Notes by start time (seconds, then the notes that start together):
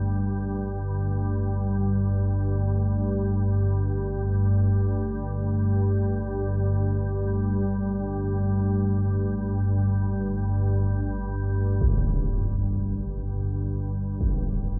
Already playing: G1 G2 A3 G4 D5
11.81 G1 G2, impact
14.21 impact